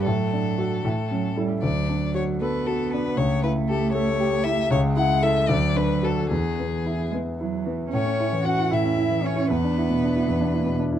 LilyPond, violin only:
\new Staff \with { instrumentName = "Violin" } { \time 6/8 \key d \major \tempo 4. = 76 a'2~ a'8 r8 | d''4 cis''8 b'8 a'8 b'8 | cis''8 b'8 a'8 cis''4 e''8 | \key a \major cis''8 fis''8 e''8 d''8 b'8 a'8 |
gis'4. r4. | cis''4 fis''8 e''4 cis''8 | b'2~ b'8 r8 | }